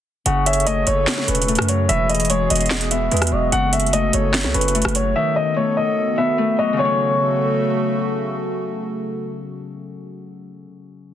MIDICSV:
0, 0, Header, 1, 7, 480
1, 0, Start_track
1, 0, Tempo, 408163
1, 305, Time_signature, 4, 2, 24, 8
1, 13101, End_track
2, 0, Start_track
2, 0, Title_t, "Grand piano"
2, 0, Program_c, 0, 0
2, 304, Note_on_c, 0, 78, 83
2, 513, Note_off_c, 0, 78, 0
2, 545, Note_on_c, 0, 76, 81
2, 754, Note_off_c, 0, 76, 0
2, 783, Note_on_c, 0, 75, 92
2, 992, Note_off_c, 0, 75, 0
2, 1025, Note_on_c, 0, 73, 92
2, 1476, Note_off_c, 0, 73, 0
2, 1503, Note_on_c, 0, 71, 77
2, 1955, Note_off_c, 0, 71, 0
2, 1983, Note_on_c, 0, 73, 74
2, 2192, Note_off_c, 0, 73, 0
2, 2221, Note_on_c, 0, 76, 99
2, 2431, Note_off_c, 0, 76, 0
2, 2463, Note_on_c, 0, 75, 78
2, 2672, Note_off_c, 0, 75, 0
2, 2702, Note_on_c, 0, 73, 92
2, 2912, Note_off_c, 0, 73, 0
2, 2944, Note_on_c, 0, 75, 77
2, 3396, Note_off_c, 0, 75, 0
2, 3425, Note_on_c, 0, 76, 73
2, 4102, Note_off_c, 0, 76, 0
2, 4143, Note_on_c, 0, 78, 100
2, 4352, Note_off_c, 0, 78, 0
2, 4383, Note_on_c, 0, 76, 77
2, 4593, Note_off_c, 0, 76, 0
2, 4625, Note_on_c, 0, 75, 87
2, 4833, Note_off_c, 0, 75, 0
2, 4867, Note_on_c, 0, 73, 77
2, 5317, Note_off_c, 0, 73, 0
2, 5344, Note_on_c, 0, 71, 78
2, 5796, Note_off_c, 0, 71, 0
2, 5826, Note_on_c, 0, 73, 84
2, 6034, Note_off_c, 0, 73, 0
2, 6065, Note_on_c, 0, 76, 88
2, 6274, Note_off_c, 0, 76, 0
2, 6304, Note_on_c, 0, 75, 83
2, 6513, Note_off_c, 0, 75, 0
2, 6543, Note_on_c, 0, 73, 84
2, 6753, Note_off_c, 0, 73, 0
2, 6784, Note_on_c, 0, 75, 79
2, 7236, Note_off_c, 0, 75, 0
2, 7265, Note_on_c, 0, 76, 79
2, 7716, Note_off_c, 0, 76, 0
2, 7745, Note_on_c, 0, 75, 75
2, 7954, Note_off_c, 0, 75, 0
2, 7985, Note_on_c, 0, 73, 90
2, 9378, Note_off_c, 0, 73, 0
2, 13101, End_track
3, 0, Start_track
3, 0, Title_t, "Soft synth lead"
3, 0, Program_c, 1, 80
3, 546, Note_on_c, 1, 73, 88
3, 1222, Note_off_c, 1, 73, 0
3, 3667, Note_on_c, 1, 71, 94
3, 3894, Note_off_c, 1, 71, 0
3, 3903, Note_on_c, 1, 75, 87
3, 4132, Note_off_c, 1, 75, 0
3, 13101, End_track
4, 0, Start_track
4, 0, Title_t, "Analog synth pad"
4, 0, Program_c, 2, 89
4, 303, Note_on_c, 2, 57, 76
4, 304, Note_on_c, 2, 49, 82
4, 304, Note_on_c, 2, 66, 78
4, 305, Note_on_c, 2, 69, 90
4, 2205, Note_off_c, 2, 49, 0
4, 2205, Note_off_c, 2, 57, 0
4, 2206, Note_off_c, 2, 69, 0
4, 2224, Note_on_c, 2, 52, 84
4, 2224, Note_on_c, 2, 68, 95
4, 2225, Note_on_c, 2, 59, 76
4, 4125, Note_off_c, 2, 68, 0
4, 4126, Note_off_c, 2, 52, 0
4, 4126, Note_off_c, 2, 59, 0
4, 4143, Note_on_c, 2, 57, 74
4, 4144, Note_on_c, 2, 49, 83
4, 4145, Note_on_c, 2, 69, 91
4, 6045, Note_off_c, 2, 49, 0
4, 6045, Note_off_c, 2, 57, 0
4, 6046, Note_off_c, 2, 69, 0
4, 6065, Note_on_c, 2, 59, 74
4, 6066, Note_on_c, 2, 51, 84
4, 6066, Note_on_c, 2, 69, 94
4, 7938, Note_off_c, 2, 66, 0
4, 7966, Note_off_c, 2, 51, 0
4, 7966, Note_off_c, 2, 59, 0
4, 7966, Note_off_c, 2, 69, 0
4, 7982, Note_on_c, 2, 49, 83
4, 7982, Note_on_c, 2, 57, 77
4, 7983, Note_on_c, 2, 66, 78
4, 7983, Note_on_c, 2, 69, 92
4, 12094, Note_off_c, 2, 49, 0
4, 12094, Note_off_c, 2, 57, 0
4, 12095, Note_off_c, 2, 66, 0
4, 12095, Note_off_c, 2, 69, 0
4, 13101, End_track
5, 0, Start_track
5, 0, Title_t, "Harp"
5, 0, Program_c, 3, 46
5, 304, Note_on_c, 3, 49, 90
5, 783, Note_on_c, 3, 57, 83
5, 1503, Note_on_c, 3, 61, 81
5, 1738, Note_off_c, 3, 57, 0
5, 1743, Note_on_c, 3, 57, 90
5, 1983, Note_on_c, 3, 54, 78
5, 2223, Note_on_c, 3, 52, 89
5, 2284, Note_off_c, 3, 49, 0
5, 2284, Note_off_c, 3, 54, 0
5, 2702, Note_on_c, 3, 56, 79
5, 2773, Note_off_c, 3, 57, 0
5, 3427, Note_on_c, 3, 59, 80
5, 3650, Note_off_c, 3, 56, 0
5, 3664, Note_on_c, 3, 56, 102
5, 3905, Note_on_c, 3, 54, 80
5, 4143, Note_on_c, 3, 49, 85
5, 4204, Note_off_c, 3, 52, 0
5, 4204, Note_off_c, 3, 54, 0
5, 4204, Note_off_c, 3, 56, 0
5, 4625, Note_on_c, 3, 57, 86
5, 4911, Note_off_c, 3, 61, 0
5, 5343, Note_on_c, 3, 61, 76
5, 5579, Note_off_c, 3, 57, 0
5, 5583, Note_on_c, 3, 57, 95
5, 5826, Note_on_c, 3, 54, 74
5, 6063, Note_on_c, 3, 51, 95
5, 6124, Note_off_c, 3, 49, 0
5, 6124, Note_off_c, 3, 54, 0
5, 6538, Note_off_c, 3, 57, 0
5, 6543, Note_on_c, 3, 57, 78
5, 7079, Note_off_c, 3, 59, 0
5, 7264, Note_on_c, 3, 59, 81
5, 7499, Note_off_c, 3, 57, 0
5, 7503, Note_on_c, 3, 57, 97
5, 7745, Note_on_c, 3, 54, 82
5, 7914, Note_on_c, 3, 49, 82
5, 7946, Note_off_c, 3, 54, 0
5, 7961, Note_on_c, 3, 54, 79
5, 8003, Note_off_c, 3, 57, 0
5, 8008, Note_on_c, 3, 57, 80
5, 8044, Note_off_c, 3, 51, 0
5, 8050, Note_off_c, 3, 61, 0
5, 8055, Note_on_c, 3, 61, 94
5, 10916, Note_off_c, 3, 59, 0
5, 12120, Note_off_c, 3, 57, 0
5, 12167, Note_off_c, 3, 61, 0
5, 12304, Note_off_c, 3, 54, 0
5, 12500, Note_off_c, 3, 49, 0
5, 13101, End_track
6, 0, Start_track
6, 0, Title_t, "808-style bass"
6, 0, Program_c, 4, 38
6, 304, Note_on_c, 4, 30, 109
6, 996, Note_off_c, 4, 30, 0
6, 1024, Note_on_c, 4, 30, 100
6, 1255, Note_off_c, 4, 30, 0
6, 1505, Note_on_c, 4, 28, 107
6, 1851, Note_off_c, 4, 28, 0
6, 1864, Note_on_c, 4, 42, 102
6, 2210, Note_off_c, 4, 42, 0
6, 2225, Note_on_c, 4, 28, 109
6, 2916, Note_off_c, 4, 28, 0
6, 2944, Note_on_c, 4, 28, 105
6, 3636, Note_off_c, 4, 28, 0
6, 3664, Note_on_c, 4, 40, 110
6, 3895, Note_off_c, 4, 40, 0
6, 3904, Note_on_c, 4, 28, 106
6, 4135, Note_off_c, 4, 28, 0
6, 4145, Note_on_c, 4, 30, 109
6, 4836, Note_off_c, 4, 30, 0
6, 4865, Note_on_c, 4, 30, 107
6, 5225, Note_on_c, 4, 37, 102
6, 5242, Note_off_c, 4, 30, 0
6, 5339, Note_off_c, 4, 37, 0
6, 5345, Note_on_c, 4, 30, 108
6, 5691, Note_off_c, 4, 30, 0
6, 5705, Note_on_c, 4, 30, 102
6, 6050, Note_off_c, 4, 30, 0
6, 13101, End_track
7, 0, Start_track
7, 0, Title_t, "Drums"
7, 304, Note_on_c, 9, 42, 81
7, 421, Note_off_c, 9, 42, 0
7, 545, Note_on_c, 9, 42, 70
7, 626, Note_off_c, 9, 42, 0
7, 626, Note_on_c, 9, 42, 54
7, 705, Note_off_c, 9, 42, 0
7, 705, Note_on_c, 9, 42, 42
7, 783, Note_off_c, 9, 42, 0
7, 783, Note_on_c, 9, 42, 84
7, 901, Note_off_c, 9, 42, 0
7, 1020, Note_on_c, 9, 42, 73
7, 1138, Note_off_c, 9, 42, 0
7, 1260, Note_on_c, 9, 39, 90
7, 1264, Note_on_c, 9, 38, 116
7, 1267, Note_on_c, 9, 42, 72
7, 1378, Note_off_c, 9, 39, 0
7, 1382, Note_off_c, 9, 38, 0
7, 1385, Note_off_c, 9, 42, 0
7, 1385, Note_on_c, 9, 38, 68
7, 1502, Note_off_c, 9, 38, 0
7, 1506, Note_on_c, 9, 42, 78
7, 1585, Note_off_c, 9, 42, 0
7, 1585, Note_on_c, 9, 42, 68
7, 1665, Note_off_c, 9, 42, 0
7, 1665, Note_on_c, 9, 42, 64
7, 1746, Note_off_c, 9, 42, 0
7, 1746, Note_on_c, 9, 42, 56
7, 1826, Note_off_c, 9, 42, 0
7, 1826, Note_on_c, 9, 42, 50
7, 1865, Note_on_c, 9, 37, 103
7, 1905, Note_off_c, 9, 42, 0
7, 1905, Note_on_c, 9, 42, 45
7, 1982, Note_off_c, 9, 42, 0
7, 1982, Note_on_c, 9, 42, 91
7, 1983, Note_off_c, 9, 37, 0
7, 2099, Note_off_c, 9, 42, 0
7, 2224, Note_on_c, 9, 42, 82
7, 2341, Note_off_c, 9, 42, 0
7, 2464, Note_on_c, 9, 42, 58
7, 2523, Note_off_c, 9, 42, 0
7, 2523, Note_on_c, 9, 42, 57
7, 2584, Note_off_c, 9, 42, 0
7, 2584, Note_on_c, 9, 42, 56
7, 2643, Note_off_c, 9, 42, 0
7, 2643, Note_on_c, 9, 42, 57
7, 2701, Note_off_c, 9, 42, 0
7, 2701, Note_on_c, 9, 42, 86
7, 2819, Note_off_c, 9, 42, 0
7, 2944, Note_on_c, 9, 42, 72
7, 3005, Note_off_c, 9, 42, 0
7, 3005, Note_on_c, 9, 42, 61
7, 3064, Note_off_c, 9, 42, 0
7, 3064, Note_on_c, 9, 42, 49
7, 3124, Note_off_c, 9, 42, 0
7, 3124, Note_on_c, 9, 42, 39
7, 3179, Note_on_c, 9, 39, 91
7, 3183, Note_off_c, 9, 42, 0
7, 3183, Note_on_c, 9, 38, 115
7, 3183, Note_on_c, 9, 42, 46
7, 3296, Note_off_c, 9, 39, 0
7, 3301, Note_off_c, 9, 38, 0
7, 3301, Note_off_c, 9, 42, 0
7, 3303, Note_on_c, 9, 42, 75
7, 3421, Note_off_c, 9, 42, 0
7, 3422, Note_on_c, 9, 42, 82
7, 3540, Note_off_c, 9, 42, 0
7, 3663, Note_on_c, 9, 42, 50
7, 3723, Note_off_c, 9, 42, 0
7, 3723, Note_on_c, 9, 42, 58
7, 3783, Note_on_c, 9, 37, 102
7, 3784, Note_off_c, 9, 42, 0
7, 3784, Note_on_c, 9, 42, 70
7, 3844, Note_off_c, 9, 42, 0
7, 3844, Note_on_c, 9, 42, 84
7, 3901, Note_off_c, 9, 37, 0
7, 3961, Note_off_c, 9, 42, 0
7, 4143, Note_on_c, 9, 42, 80
7, 4261, Note_off_c, 9, 42, 0
7, 4384, Note_on_c, 9, 42, 70
7, 4464, Note_off_c, 9, 42, 0
7, 4464, Note_on_c, 9, 42, 54
7, 4545, Note_off_c, 9, 42, 0
7, 4545, Note_on_c, 9, 42, 40
7, 4623, Note_off_c, 9, 42, 0
7, 4623, Note_on_c, 9, 42, 86
7, 4741, Note_off_c, 9, 42, 0
7, 4860, Note_on_c, 9, 42, 77
7, 4978, Note_off_c, 9, 42, 0
7, 5099, Note_on_c, 9, 39, 92
7, 5104, Note_on_c, 9, 38, 119
7, 5107, Note_on_c, 9, 42, 71
7, 5217, Note_off_c, 9, 39, 0
7, 5221, Note_off_c, 9, 38, 0
7, 5224, Note_on_c, 9, 38, 70
7, 5225, Note_off_c, 9, 42, 0
7, 5342, Note_off_c, 9, 38, 0
7, 5344, Note_on_c, 9, 42, 76
7, 5425, Note_off_c, 9, 42, 0
7, 5425, Note_on_c, 9, 42, 67
7, 5505, Note_off_c, 9, 42, 0
7, 5505, Note_on_c, 9, 42, 64
7, 5585, Note_off_c, 9, 42, 0
7, 5585, Note_on_c, 9, 42, 58
7, 5665, Note_off_c, 9, 42, 0
7, 5665, Note_on_c, 9, 42, 49
7, 5704, Note_on_c, 9, 37, 102
7, 5745, Note_off_c, 9, 42, 0
7, 5745, Note_on_c, 9, 42, 46
7, 5820, Note_off_c, 9, 42, 0
7, 5820, Note_on_c, 9, 42, 94
7, 5822, Note_off_c, 9, 37, 0
7, 5938, Note_off_c, 9, 42, 0
7, 13101, End_track
0, 0, End_of_file